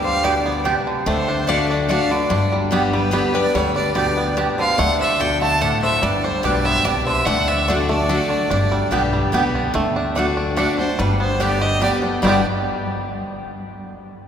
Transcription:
Already playing: D2 D3 G3 D4 G4
0.04 C5 F5
0.23 B2 B3 G4 B4 D5 G5
0.46 B3
0.64 C3 B3 D4 G4 D5 G5
0.87 D3
1.06 D2 D3 A3 A4 C5
1.28 D4
1.47 D3 A3 D4 F#4 D5 F5 F#5
1.70 D4 D5, muted resonator guitar played with a steel bar stroke
1.89 D3 A3 D4 F#4 D5 F5 F#5
2.10 D3 D4 F#4 B4 D5
2.30 G1 G2 D4
2.52 G3
2.71 D3 G3 B3 G4 D5 G5
2.93 G3 G4 B4
3.11 D3 G3 B3 G4 D5 G5
3.34 B3 D4 G4 B4 D5
3.55 D2 D3 G3 G4 C#5
3.76 D4 B4 D5
3.95 B2 B3 G4 B4 D5 G5
4.17 B3
4.37 C3 B3 D4 G4 D5 G5
4.58 D3 C5 F5
4.78 D2 D3 A3 D5 F#5
5.00 D4 C5 E5
5.20 B2 A3 D4 F#4 D5 F#5 G5
5.41 A3 F#5 A5
5.61 A2 A3 D4 F#4 D5 F#5
5.83 A3 C5 E5
6.02 G1 G2 G3 B4 D5
6.24 D4 A4 C5
6.43 B1 B2 B3 G4 B4 D5 G5
6.65 B3 C5 E5
6.84 C2 C3 B3 D4 G4 B4 D5 G5
7.06 D3 C5 E5
7.26 D2 D3 A3 D5 F#5
7.47 D4 C5 E5
7.67 D3 A3 D4 F#4 A4 D5 F#5
7.89 A3 D4 F#4 A4 D5
8.09 D3 A3 D4 F#4 D5 F#5
8.30 D4
8.50 G1 G2 D4
8.72 G3
8.91 B1 D3 G3 B3 G4 D5 G5
9.13 G3
9.32 C2 D3 G3 B3 G4 D5 G5
9.55 D4
9.74 D2 D3 A3
9.96 D4
10.15 D3 A3 D4 F#4 D5 F#5
10.37 D4
10.56 D3 A3 D4 F#4 D5 F#5
10.78 D4 F#4 C5
10.99 G1 G2 G3 B4
11.20 B3 C5
11.40 D3 G3 B3 D4 G4 D5 G5
11.61 G4 D#5
11.80 D3 G3 B3 G4 D5 G5
12.02 B3 D4 G4
12.22 G1 G2 B2 D3 G3 B3 G4 D5 G5
12.27 D4 G4

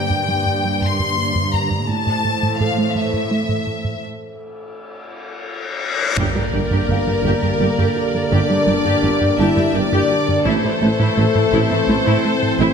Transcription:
Already playing: G2 D3 A#3 G4 C5 D5 G5
0.10 G2
0.28 G2
0.46 G2
0.64 G3
0.82 G2 C6
1.00 G2
1.18 G3
1.35 G2
1.53 G2 A#5
1.71 G2
1.88 A2 E3 A3 A4 C5 A5
2.07 A2
2.25 A2
2.43 A2
2.60 A2 A3 A4 F5
2.78 A3
2.96 A2 E5
3.14 A2
3.31 A3
3.49 A2
3.67 A2
3.85 A2
4.03 reverse cymbal
6.17 G1 G2 D3 A#3 D4 G4 A#4 D5, impact
6.35 G2 G3 G4
6.53 G1 G2 G3 G4
6.71 G2 G4
6.89 G1 G2 G4 F5
7.07 G2 G4
7.24 G1 G2 G4
7.42 G2 G4
7.59 G1 G2 G3 G4
7.78 G2 G4
7.96 G3
8.14 G2
8.31 G1 G2 D4 G4 D5
8.49 G2 G3 G4
8.67 G1 G2 G3 G4
8.84 G2 G4
9.02 G1 G2 G4
9.20 G2 G4
9.38 G1 G2 E4 G4 E5 A5
9.56 G2 G4
9.74 G1 G2 G3 D4 G4 D5
9.92 G2 G4
10.11 G3
10.28 G2
10.45 A1 A2 E3 A3 C4 E4 A4 C5
10.63 A2 A3 E4
10.81 A1 A2 A3 E4
10.99 A2 E4
11.17 A1 A2 E4
11.35 A2 E4
11.52 A1 A2 E4
11.71 A2 E4
11.88 A1 A2 A3 E4
12.06 A2 E4
12.25 A3
12.42 A2
12.59 A1 A2 C4 E4 C5

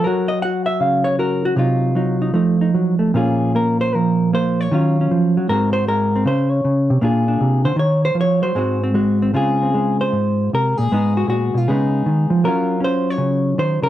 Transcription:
0.04 F#3 F#4 A#4
0.28 D#5
0.42 F#4 F#5
0.66 E5
0.80 C#3 F5
1.04 C#5
1.19 F#4 A#4
1.45 F#4
1.56 C3 F#3 D#4 F4
1.95 F#3 D#4
2.22 D#4
2.34 F3 A3 D#4
2.61 D#4
2.74 F#3
2.99 A3
3.14 A#2 A#3 C#4 F4 G#4
3.55 A#3 A#4
3.81 C5
3.95 F3 A#4
4.33 A#3 C5
4.61 C#5
4.72 D#3 F#3 C#4 F4
5.01 C#4
5.11 F3
5.37 F#3
5.49 G#2 G#3 C4 F#4 A#4
5.73 C5
5.88 G#3 A#4
6.16 C4
6.25 C#3 C5
6.51 C#5
6.65 C#3
6.90 C3
7.01 A#2 A#3 D4 F4 G#4
7.28 D4
7.41 C3
7.65 D3 C5
7.76 D#3 C#5
8.05 C5
8.15 F3
8.21 C#5
8.42 F#3 C5
8.55 G#2 G#3 C4 F#4
8.84 C4
8.94 G#3 F#4
9.22 C4
9.34 C#3 G#3 C4 F4 G#4
9.63 C4
9.74 G#3
10.01 C5
10.12 G#2
10.53 C3 A#4
10.78 A#2 G#4
10.92 G#2 G#3 B3 D#4
11.17 F#4
11.28 A#2 F#4
11.54 B2 F4
11.68 C#3 G#3 B3 D#4 G#4
12.06 D#3
12.30 F3
12.44 F#3 C#4 F4 A#4
12.80 C#4 C5
13.10 C#5
13.18 C#3
13.58 D#3 C5
13.82 C#3 A#4

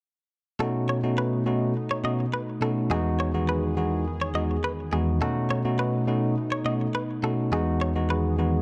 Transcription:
0.59 B2 A3 C#4 D#4 F#4 A4
0.89 C#5
1.03 B2 A3 C#4 D#4 F#4
1.18 B4
1.46 B2 A3 C#4 D#4 F#4
1.91 C#5
2.04 B2 A3 C#4 D#4 F#4 D#5
2.34 B4
2.61 B2 A3 C#4 D#4 F#4 A4
2.90 E2 D#3 G#3 B3 D#4 F#4 G#4
3.20 C#5
3.34 E2 G#3 B3 D#4 F#4
3.49 B4
3.77 E2 G#3 B3 D#4 F#4
4.22 C#5
4.34 E2 G#3 B3 D#4 F#4 D#5
4.64 B4
4.92 E2 G#3 B3 D#4 F#4 G#4
5.21 B2 A3 C#4 D#4 F#4 A4
5.51 C#5
5.64 B2 A3 C#4 D#4 F#4
5.79 B4
6.07 B2 A3 C#4 D#4 F#4
6.52 C#5
6.65 B2 A3 C#4 D#4 F#4 D#5
6.95 B4
7.23 B2 A3 C#4 D#4 F#4 A4
7.52 E2 D#3 G#3 B3 D#4 F#4 G#4
7.81 C#5
7.95 E2 G#3 B3 D#4 F#4
8.10 B4
8.38 E2 G#3 B3 D#4 F#4

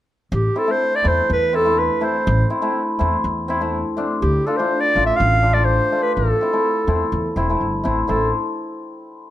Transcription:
0.32 A1 G4
0.56 C4 E4 A4
0.67 A3 C4 E4 C5
0.96 D5
1.03 E2 A3 C4 E4
1.08 C5
1.30 E2 B4
1.53 C4 E4 A4
1.65 A3 C4 E4
1.79 B4
2.01 A3 C4 E4 C5
2.27 A1
2.50 C4 E4
2.62 A3 C4 E4
2.99 E2 A3 C4 E4
3.24 E2
3.48 C4 E4
3.61 A3 C4 E4
3.97 A3 C4 D4
4.21 D2 G4
4.46 D4 F4 A4
4.57 A3 D4 F4 C5
4.80 D5
4.95 A1 A3 D4 F4
5.06 E5
5.16 A1 F5
5.42 D4 F4
5.54 A3 D4 F4 D5
5.65 C5
5.92 A3 D4 F4
6.02 B4
6.15 A1 A4
6.41 C4 E4
6.53 A3 C4 E4
6.87 E2 A3 C4 E4
7.12 E2
7.36 E1 C4 E4
7.49 A3 C4 E4
7.61 G1
7.84 A1 A3 C4 E4
8.07 A1 A3 C4 E4 A4

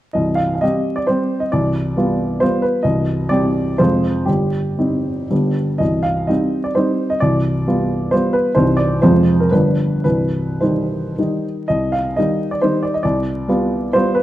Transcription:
0.13 C1 C2 D#5
0.35 F5
0.55 F5
0.61 G3 C4 G4 D#5
0.96 D5
1.07 G3 C4 G4 C5
1.40 D#5
1.52 C1 C2 D5
1.97 G3 B3 F4
2.40 G3 B3 F4 C5
2.62 B4
2.83 C1 C2 D#5
3.29 G3 C4 G4 D5
3.78 F1 F2 G#3 C4 F4 C5
4.25 G1 G2 G4
4.78 G3 C4 D#4
5.31 G1 G2 G3 B3 D4
5.78 C1 C2 D#5
6.03 F5
6.27 G3 C4 D#4 D#5
6.64 D5
6.75 G3 C4 D#4 C5
7.10 D#5
7.20 C1 C2 D5
7.67 G3 B3 F4
8.11 G3 B3 F4 C5
8.33 B4
8.55 C1 C2 G3 C4 D#4 C5
8.77 D5
9.02 F1 F2 F3 G#3 F4 C5
9.40 A#4
9.51 G1 G2 F3 G3 D4 B4
10.04 C1 C2 B4
10.61 D#3 G3 D#4 C5
11.18 D#3 G3 D#4
11.68 C2 D#5
11.92 F5
12.16 D#3 G3 D#4 D#5
12.51 D5
12.62 D#3 G3 D#4 C5
12.83 D5
12.94 D#5
13.03 C2 D5
13.48 G3 B3 F4
13.93 G3 B3 F4 C5
14.15 B4

